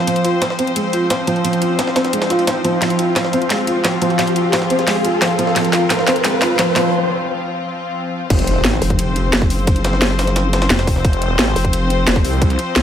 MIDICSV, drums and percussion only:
0, 0, Header, 1, 2, 480
1, 0, Start_track
1, 0, Tempo, 342857
1, 104, Time_signature, 4, 2, 24, 8
1, 17955, End_track
2, 0, Start_track
2, 0, Title_t, "Drums"
2, 104, Note_on_c, 9, 42, 87
2, 104, Note_on_c, 9, 51, 90
2, 225, Note_off_c, 9, 42, 0
2, 225, Note_on_c, 9, 42, 38
2, 244, Note_off_c, 9, 51, 0
2, 344, Note_off_c, 9, 42, 0
2, 344, Note_on_c, 9, 42, 68
2, 344, Note_on_c, 9, 51, 70
2, 484, Note_off_c, 9, 42, 0
2, 484, Note_off_c, 9, 51, 0
2, 583, Note_on_c, 9, 42, 92
2, 584, Note_on_c, 9, 38, 113
2, 584, Note_on_c, 9, 51, 85
2, 704, Note_off_c, 9, 38, 0
2, 704, Note_on_c, 9, 38, 50
2, 723, Note_off_c, 9, 42, 0
2, 724, Note_off_c, 9, 51, 0
2, 823, Note_on_c, 9, 42, 68
2, 824, Note_on_c, 9, 51, 68
2, 844, Note_off_c, 9, 38, 0
2, 944, Note_off_c, 9, 42, 0
2, 944, Note_on_c, 9, 42, 40
2, 964, Note_off_c, 9, 51, 0
2, 1064, Note_off_c, 9, 42, 0
2, 1064, Note_on_c, 9, 42, 95
2, 1064, Note_on_c, 9, 51, 89
2, 1204, Note_off_c, 9, 42, 0
2, 1204, Note_off_c, 9, 51, 0
2, 1304, Note_on_c, 9, 51, 71
2, 1305, Note_on_c, 9, 42, 67
2, 1444, Note_off_c, 9, 51, 0
2, 1445, Note_off_c, 9, 42, 0
2, 1544, Note_on_c, 9, 38, 121
2, 1544, Note_on_c, 9, 42, 96
2, 1544, Note_on_c, 9, 51, 92
2, 1684, Note_off_c, 9, 38, 0
2, 1684, Note_off_c, 9, 42, 0
2, 1684, Note_off_c, 9, 51, 0
2, 1784, Note_on_c, 9, 42, 67
2, 1784, Note_on_c, 9, 51, 69
2, 1904, Note_off_c, 9, 51, 0
2, 1904, Note_on_c, 9, 51, 43
2, 1924, Note_off_c, 9, 42, 0
2, 2023, Note_off_c, 9, 51, 0
2, 2023, Note_on_c, 9, 51, 91
2, 2024, Note_on_c, 9, 42, 88
2, 2143, Note_off_c, 9, 42, 0
2, 2143, Note_on_c, 9, 42, 35
2, 2163, Note_off_c, 9, 51, 0
2, 2264, Note_off_c, 9, 42, 0
2, 2264, Note_on_c, 9, 42, 63
2, 2264, Note_on_c, 9, 51, 70
2, 2404, Note_off_c, 9, 42, 0
2, 2404, Note_off_c, 9, 51, 0
2, 2503, Note_on_c, 9, 38, 116
2, 2503, Note_on_c, 9, 42, 87
2, 2503, Note_on_c, 9, 51, 91
2, 2623, Note_off_c, 9, 38, 0
2, 2623, Note_on_c, 9, 38, 52
2, 2643, Note_off_c, 9, 42, 0
2, 2643, Note_off_c, 9, 51, 0
2, 2742, Note_off_c, 9, 38, 0
2, 2742, Note_on_c, 9, 38, 102
2, 2742, Note_on_c, 9, 51, 80
2, 2744, Note_on_c, 9, 42, 64
2, 2863, Note_off_c, 9, 38, 0
2, 2863, Note_on_c, 9, 38, 49
2, 2864, Note_off_c, 9, 42, 0
2, 2864, Note_on_c, 9, 42, 38
2, 2882, Note_off_c, 9, 51, 0
2, 2983, Note_on_c, 9, 51, 61
2, 2984, Note_off_c, 9, 42, 0
2, 2984, Note_on_c, 9, 42, 93
2, 3003, Note_off_c, 9, 38, 0
2, 3103, Note_off_c, 9, 51, 0
2, 3103, Note_on_c, 9, 38, 98
2, 3103, Note_on_c, 9, 51, 77
2, 3124, Note_off_c, 9, 42, 0
2, 3223, Note_off_c, 9, 38, 0
2, 3223, Note_on_c, 9, 38, 50
2, 3223, Note_on_c, 9, 42, 64
2, 3243, Note_off_c, 9, 51, 0
2, 3343, Note_on_c, 9, 51, 64
2, 3363, Note_off_c, 9, 38, 0
2, 3363, Note_off_c, 9, 42, 0
2, 3463, Note_on_c, 9, 42, 92
2, 3464, Note_off_c, 9, 51, 0
2, 3464, Note_on_c, 9, 38, 115
2, 3464, Note_on_c, 9, 51, 93
2, 3603, Note_off_c, 9, 42, 0
2, 3604, Note_off_c, 9, 38, 0
2, 3604, Note_off_c, 9, 51, 0
2, 3704, Note_on_c, 9, 42, 66
2, 3704, Note_on_c, 9, 51, 67
2, 3844, Note_off_c, 9, 42, 0
2, 3844, Note_off_c, 9, 51, 0
2, 3943, Note_on_c, 9, 38, 46
2, 3943, Note_on_c, 9, 42, 83
2, 3944, Note_on_c, 9, 51, 91
2, 4064, Note_off_c, 9, 42, 0
2, 4064, Note_on_c, 9, 42, 34
2, 4083, Note_off_c, 9, 38, 0
2, 4084, Note_off_c, 9, 51, 0
2, 4184, Note_off_c, 9, 42, 0
2, 4184, Note_on_c, 9, 42, 62
2, 4184, Note_on_c, 9, 51, 67
2, 4324, Note_off_c, 9, 42, 0
2, 4324, Note_off_c, 9, 51, 0
2, 4424, Note_on_c, 9, 38, 49
2, 4424, Note_on_c, 9, 42, 84
2, 4424, Note_on_c, 9, 51, 88
2, 4544, Note_off_c, 9, 38, 0
2, 4544, Note_on_c, 9, 38, 51
2, 4564, Note_off_c, 9, 42, 0
2, 4564, Note_off_c, 9, 51, 0
2, 4664, Note_on_c, 9, 42, 62
2, 4664, Note_on_c, 9, 51, 65
2, 4684, Note_off_c, 9, 38, 0
2, 4784, Note_off_c, 9, 42, 0
2, 4784, Note_on_c, 9, 42, 38
2, 4804, Note_off_c, 9, 51, 0
2, 4903, Note_off_c, 9, 42, 0
2, 4903, Note_on_c, 9, 38, 52
2, 4903, Note_on_c, 9, 42, 90
2, 4904, Note_on_c, 9, 51, 86
2, 5043, Note_off_c, 9, 38, 0
2, 5043, Note_off_c, 9, 42, 0
2, 5044, Note_off_c, 9, 51, 0
2, 5143, Note_on_c, 9, 42, 62
2, 5144, Note_on_c, 9, 51, 71
2, 5283, Note_off_c, 9, 42, 0
2, 5284, Note_off_c, 9, 51, 0
2, 5383, Note_on_c, 9, 38, 123
2, 5383, Note_on_c, 9, 42, 89
2, 5383, Note_on_c, 9, 51, 93
2, 5523, Note_off_c, 9, 38, 0
2, 5523, Note_off_c, 9, 42, 0
2, 5523, Note_off_c, 9, 51, 0
2, 5623, Note_on_c, 9, 42, 67
2, 5623, Note_on_c, 9, 51, 70
2, 5744, Note_off_c, 9, 51, 0
2, 5744, Note_on_c, 9, 51, 46
2, 5763, Note_off_c, 9, 42, 0
2, 5863, Note_off_c, 9, 51, 0
2, 5863, Note_on_c, 9, 51, 90
2, 5864, Note_on_c, 9, 38, 57
2, 5864, Note_on_c, 9, 42, 85
2, 5984, Note_off_c, 9, 42, 0
2, 5984, Note_on_c, 9, 42, 34
2, 6003, Note_off_c, 9, 51, 0
2, 6004, Note_off_c, 9, 38, 0
2, 6103, Note_on_c, 9, 51, 68
2, 6104, Note_off_c, 9, 42, 0
2, 6104, Note_on_c, 9, 42, 62
2, 6243, Note_off_c, 9, 51, 0
2, 6244, Note_off_c, 9, 42, 0
2, 6343, Note_on_c, 9, 38, 61
2, 6343, Note_on_c, 9, 42, 84
2, 6343, Note_on_c, 9, 51, 88
2, 6463, Note_off_c, 9, 38, 0
2, 6463, Note_on_c, 9, 38, 52
2, 6483, Note_off_c, 9, 42, 0
2, 6483, Note_off_c, 9, 51, 0
2, 6582, Note_on_c, 9, 51, 70
2, 6583, Note_on_c, 9, 42, 64
2, 6603, Note_off_c, 9, 38, 0
2, 6703, Note_on_c, 9, 38, 45
2, 6704, Note_off_c, 9, 42, 0
2, 6704, Note_on_c, 9, 42, 38
2, 6722, Note_off_c, 9, 51, 0
2, 6823, Note_on_c, 9, 46, 84
2, 6824, Note_off_c, 9, 38, 0
2, 6824, Note_off_c, 9, 42, 0
2, 6824, Note_on_c, 9, 38, 67
2, 6824, Note_on_c, 9, 42, 89
2, 6963, Note_off_c, 9, 46, 0
2, 6964, Note_off_c, 9, 38, 0
2, 6964, Note_off_c, 9, 42, 0
2, 7063, Note_on_c, 9, 51, 71
2, 7064, Note_on_c, 9, 42, 64
2, 7203, Note_off_c, 9, 51, 0
2, 7204, Note_off_c, 9, 42, 0
2, 7303, Note_on_c, 9, 38, 120
2, 7303, Note_on_c, 9, 51, 91
2, 7304, Note_off_c, 9, 38, 0
2, 7304, Note_on_c, 9, 38, 70
2, 7304, Note_on_c, 9, 42, 89
2, 7443, Note_off_c, 9, 51, 0
2, 7444, Note_off_c, 9, 38, 0
2, 7444, Note_off_c, 9, 42, 0
2, 7543, Note_on_c, 9, 42, 67
2, 7544, Note_on_c, 9, 51, 71
2, 7663, Note_on_c, 9, 38, 43
2, 7683, Note_off_c, 9, 42, 0
2, 7684, Note_off_c, 9, 51, 0
2, 7783, Note_off_c, 9, 38, 0
2, 7783, Note_on_c, 9, 38, 71
2, 7783, Note_on_c, 9, 42, 89
2, 7783, Note_on_c, 9, 51, 95
2, 7903, Note_off_c, 9, 42, 0
2, 7903, Note_on_c, 9, 42, 36
2, 7923, Note_off_c, 9, 38, 0
2, 7923, Note_off_c, 9, 51, 0
2, 8023, Note_off_c, 9, 42, 0
2, 8023, Note_on_c, 9, 38, 77
2, 8023, Note_on_c, 9, 42, 65
2, 8024, Note_on_c, 9, 51, 73
2, 8163, Note_off_c, 9, 38, 0
2, 8163, Note_off_c, 9, 42, 0
2, 8164, Note_off_c, 9, 51, 0
2, 8263, Note_on_c, 9, 38, 79
2, 8263, Note_on_c, 9, 42, 85
2, 8264, Note_off_c, 9, 38, 0
2, 8264, Note_on_c, 9, 38, 111
2, 8264, Note_on_c, 9, 51, 85
2, 8384, Note_off_c, 9, 38, 0
2, 8384, Note_on_c, 9, 38, 52
2, 8403, Note_off_c, 9, 42, 0
2, 8404, Note_off_c, 9, 51, 0
2, 8503, Note_off_c, 9, 38, 0
2, 8503, Note_on_c, 9, 38, 83
2, 8503, Note_on_c, 9, 42, 66
2, 8504, Note_on_c, 9, 51, 66
2, 8622, Note_off_c, 9, 42, 0
2, 8622, Note_on_c, 9, 42, 40
2, 8643, Note_off_c, 9, 38, 0
2, 8644, Note_off_c, 9, 51, 0
2, 8742, Note_off_c, 9, 42, 0
2, 8742, Note_on_c, 9, 38, 84
2, 8742, Note_on_c, 9, 42, 91
2, 8744, Note_on_c, 9, 51, 89
2, 8882, Note_off_c, 9, 38, 0
2, 8882, Note_off_c, 9, 42, 0
2, 8884, Note_off_c, 9, 51, 0
2, 8983, Note_on_c, 9, 38, 87
2, 8983, Note_on_c, 9, 42, 65
2, 8984, Note_on_c, 9, 51, 73
2, 9123, Note_off_c, 9, 38, 0
2, 9123, Note_off_c, 9, 42, 0
2, 9124, Note_off_c, 9, 51, 0
2, 9223, Note_on_c, 9, 38, 91
2, 9223, Note_on_c, 9, 42, 96
2, 9224, Note_off_c, 9, 38, 0
2, 9224, Note_on_c, 9, 38, 122
2, 9224, Note_on_c, 9, 51, 93
2, 9363, Note_off_c, 9, 42, 0
2, 9364, Note_off_c, 9, 38, 0
2, 9364, Note_off_c, 9, 51, 0
2, 9463, Note_on_c, 9, 51, 61
2, 9464, Note_on_c, 9, 38, 90
2, 9464, Note_on_c, 9, 42, 66
2, 9603, Note_off_c, 9, 51, 0
2, 9604, Note_off_c, 9, 38, 0
2, 9604, Note_off_c, 9, 42, 0
2, 11624, Note_on_c, 9, 36, 120
2, 11624, Note_on_c, 9, 42, 92
2, 11624, Note_on_c, 9, 49, 96
2, 11624, Note_on_c, 9, 51, 92
2, 11744, Note_off_c, 9, 42, 0
2, 11744, Note_on_c, 9, 42, 38
2, 11764, Note_off_c, 9, 36, 0
2, 11764, Note_off_c, 9, 49, 0
2, 11764, Note_off_c, 9, 51, 0
2, 11863, Note_on_c, 9, 51, 70
2, 11864, Note_off_c, 9, 42, 0
2, 11864, Note_on_c, 9, 42, 71
2, 12003, Note_off_c, 9, 51, 0
2, 12004, Note_off_c, 9, 42, 0
2, 12103, Note_on_c, 9, 38, 113
2, 12103, Note_on_c, 9, 42, 92
2, 12104, Note_off_c, 9, 38, 0
2, 12104, Note_on_c, 9, 38, 111
2, 12104, Note_on_c, 9, 51, 85
2, 12224, Note_off_c, 9, 38, 0
2, 12224, Note_on_c, 9, 38, 51
2, 12243, Note_off_c, 9, 42, 0
2, 12244, Note_off_c, 9, 51, 0
2, 12343, Note_on_c, 9, 46, 78
2, 12344, Note_on_c, 9, 51, 69
2, 12364, Note_off_c, 9, 38, 0
2, 12463, Note_on_c, 9, 42, 43
2, 12464, Note_on_c, 9, 36, 64
2, 12483, Note_off_c, 9, 46, 0
2, 12484, Note_off_c, 9, 51, 0
2, 12583, Note_off_c, 9, 42, 0
2, 12583, Note_on_c, 9, 42, 100
2, 12584, Note_on_c, 9, 51, 89
2, 12604, Note_off_c, 9, 36, 0
2, 12723, Note_off_c, 9, 42, 0
2, 12724, Note_off_c, 9, 51, 0
2, 12823, Note_on_c, 9, 42, 70
2, 12824, Note_on_c, 9, 51, 70
2, 12963, Note_off_c, 9, 42, 0
2, 12964, Note_off_c, 9, 51, 0
2, 13063, Note_on_c, 9, 38, 120
2, 13063, Note_on_c, 9, 42, 98
2, 13064, Note_off_c, 9, 38, 0
2, 13064, Note_on_c, 9, 38, 119
2, 13064, Note_on_c, 9, 51, 94
2, 13184, Note_on_c, 9, 36, 109
2, 13203, Note_off_c, 9, 42, 0
2, 13204, Note_off_c, 9, 38, 0
2, 13204, Note_off_c, 9, 51, 0
2, 13304, Note_on_c, 9, 46, 83
2, 13304, Note_on_c, 9, 51, 68
2, 13324, Note_off_c, 9, 36, 0
2, 13424, Note_off_c, 9, 51, 0
2, 13424, Note_on_c, 9, 51, 46
2, 13444, Note_off_c, 9, 46, 0
2, 13542, Note_on_c, 9, 42, 94
2, 13544, Note_on_c, 9, 36, 123
2, 13545, Note_off_c, 9, 51, 0
2, 13545, Note_on_c, 9, 51, 92
2, 13663, Note_off_c, 9, 42, 0
2, 13663, Note_on_c, 9, 42, 40
2, 13684, Note_off_c, 9, 36, 0
2, 13685, Note_off_c, 9, 51, 0
2, 13782, Note_off_c, 9, 42, 0
2, 13782, Note_on_c, 9, 42, 72
2, 13784, Note_on_c, 9, 38, 108
2, 13784, Note_on_c, 9, 51, 83
2, 13905, Note_off_c, 9, 38, 0
2, 13905, Note_on_c, 9, 38, 46
2, 13922, Note_off_c, 9, 42, 0
2, 13924, Note_off_c, 9, 51, 0
2, 14023, Note_off_c, 9, 38, 0
2, 14023, Note_on_c, 9, 38, 124
2, 14023, Note_on_c, 9, 42, 97
2, 14025, Note_off_c, 9, 38, 0
2, 14025, Note_on_c, 9, 38, 118
2, 14025, Note_on_c, 9, 51, 86
2, 14145, Note_off_c, 9, 38, 0
2, 14145, Note_on_c, 9, 38, 54
2, 14163, Note_off_c, 9, 42, 0
2, 14165, Note_off_c, 9, 51, 0
2, 14263, Note_on_c, 9, 46, 78
2, 14266, Note_off_c, 9, 38, 0
2, 14266, Note_on_c, 9, 38, 111
2, 14266, Note_on_c, 9, 51, 82
2, 14384, Note_on_c, 9, 42, 42
2, 14386, Note_off_c, 9, 38, 0
2, 14386, Note_on_c, 9, 38, 46
2, 14403, Note_off_c, 9, 46, 0
2, 14406, Note_off_c, 9, 51, 0
2, 14503, Note_off_c, 9, 42, 0
2, 14503, Note_on_c, 9, 42, 98
2, 14506, Note_off_c, 9, 38, 0
2, 14506, Note_on_c, 9, 38, 107
2, 14506, Note_on_c, 9, 51, 82
2, 14643, Note_off_c, 9, 42, 0
2, 14646, Note_off_c, 9, 38, 0
2, 14646, Note_off_c, 9, 51, 0
2, 14743, Note_on_c, 9, 42, 73
2, 14745, Note_on_c, 9, 38, 113
2, 14745, Note_on_c, 9, 51, 83
2, 14865, Note_off_c, 9, 38, 0
2, 14865, Note_off_c, 9, 51, 0
2, 14865, Note_on_c, 9, 38, 107
2, 14865, Note_on_c, 9, 51, 81
2, 14883, Note_off_c, 9, 42, 0
2, 14983, Note_off_c, 9, 38, 0
2, 14983, Note_on_c, 9, 38, 127
2, 14983, Note_on_c, 9, 42, 102
2, 14986, Note_off_c, 9, 38, 0
2, 14986, Note_off_c, 9, 51, 0
2, 14986, Note_on_c, 9, 38, 108
2, 14986, Note_on_c, 9, 51, 83
2, 15105, Note_off_c, 9, 38, 0
2, 15105, Note_off_c, 9, 51, 0
2, 15105, Note_on_c, 9, 38, 107
2, 15105, Note_on_c, 9, 51, 81
2, 15123, Note_off_c, 9, 42, 0
2, 15224, Note_on_c, 9, 36, 108
2, 15224, Note_on_c, 9, 46, 76
2, 15226, Note_off_c, 9, 51, 0
2, 15226, Note_on_c, 9, 51, 71
2, 15245, Note_off_c, 9, 38, 0
2, 15345, Note_on_c, 9, 38, 41
2, 15364, Note_off_c, 9, 36, 0
2, 15364, Note_off_c, 9, 46, 0
2, 15366, Note_off_c, 9, 51, 0
2, 15464, Note_on_c, 9, 36, 122
2, 15464, Note_on_c, 9, 42, 91
2, 15466, Note_on_c, 9, 51, 93
2, 15485, Note_off_c, 9, 38, 0
2, 15584, Note_off_c, 9, 42, 0
2, 15584, Note_on_c, 9, 42, 38
2, 15604, Note_off_c, 9, 36, 0
2, 15606, Note_off_c, 9, 51, 0
2, 15704, Note_off_c, 9, 42, 0
2, 15704, Note_on_c, 9, 42, 67
2, 15705, Note_on_c, 9, 51, 72
2, 15844, Note_off_c, 9, 42, 0
2, 15845, Note_off_c, 9, 51, 0
2, 15944, Note_on_c, 9, 38, 123
2, 15944, Note_on_c, 9, 42, 94
2, 15945, Note_off_c, 9, 38, 0
2, 15945, Note_on_c, 9, 38, 116
2, 15945, Note_on_c, 9, 51, 84
2, 16064, Note_off_c, 9, 38, 0
2, 16064, Note_on_c, 9, 38, 53
2, 16084, Note_off_c, 9, 42, 0
2, 16085, Note_off_c, 9, 51, 0
2, 16184, Note_on_c, 9, 46, 78
2, 16185, Note_on_c, 9, 51, 70
2, 16204, Note_off_c, 9, 38, 0
2, 16304, Note_on_c, 9, 36, 67
2, 16305, Note_on_c, 9, 42, 40
2, 16324, Note_off_c, 9, 46, 0
2, 16325, Note_off_c, 9, 51, 0
2, 16424, Note_off_c, 9, 42, 0
2, 16424, Note_on_c, 9, 42, 97
2, 16425, Note_on_c, 9, 51, 88
2, 16444, Note_off_c, 9, 36, 0
2, 16564, Note_off_c, 9, 42, 0
2, 16565, Note_off_c, 9, 51, 0
2, 16664, Note_on_c, 9, 42, 70
2, 16665, Note_on_c, 9, 51, 71
2, 16804, Note_off_c, 9, 42, 0
2, 16805, Note_off_c, 9, 51, 0
2, 16904, Note_on_c, 9, 38, 126
2, 16904, Note_on_c, 9, 42, 98
2, 16905, Note_off_c, 9, 38, 0
2, 16905, Note_on_c, 9, 38, 121
2, 16905, Note_on_c, 9, 51, 95
2, 17023, Note_on_c, 9, 36, 118
2, 17044, Note_off_c, 9, 42, 0
2, 17045, Note_off_c, 9, 38, 0
2, 17045, Note_off_c, 9, 51, 0
2, 17144, Note_on_c, 9, 46, 78
2, 17145, Note_on_c, 9, 51, 72
2, 17163, Note_off_c, 9, 36, 0
2, 17264, Note_off_c, 9, 51, 0
2, 17264, Note_on_c, 9, 51, 44
2, 17284, Note_off_c, 9, 46, 0
2, 17383, Note_on_c, 9, 42, 86
2, 17384, Note_off_c, 9, 51, 0
2, 17384, Note_on_c, 9, 36, 118
2, 17384, Note_on_c, 9, 51, 94
2, 17504, Note_off_c, 9, 42, 0
2, 17504, Note_on_c, 9, 42, 36
2, 17524, Note_off_c, 9, 36, 0
2, 17524, Note_off_c, 9, 51, 0
2, 17623, Note_off_c, 9, 42, 0
2, 17623, Note_on_c, 9, 42, 68
2, 17625, Note_on_c, 9, 51, 70
2, 17763, Note_off_c, 9, 42, 0
2, 17765, Note_off_c, 9, 51, 0
2, 17863, Note_on_c, 9, 38, 121
2, 17863, Note_on_c, 9, 42, 89
2, 17864, Note_off_c, 9, 38, 0
2, 17864, Note_on_c, 9, 38, 119
2, 17864, Note_on_c, 9, 51, 86
2, 17955, Note_off_c, 9, 38, 0
2, 17955, Note_off_c, 9, 42, 0
2, 17955, Note_off_c, 9, 51, 0
2, 17955, End_track
0, 0, End_of_file